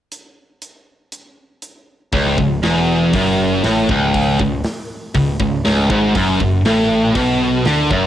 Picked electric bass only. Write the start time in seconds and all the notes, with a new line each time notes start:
2.13 C#1
2.38 C#1
2.64 E1
3.14 F#1
3.64 A1
3.89 C#1
4.39 C#1
5.15 C#1
5.39 C#1
5.65 C#1
5.90 G#1
6.15 F#1
6.40 F#1
6.65 A1
7.15 B1
7.66 D2
7.91 F#1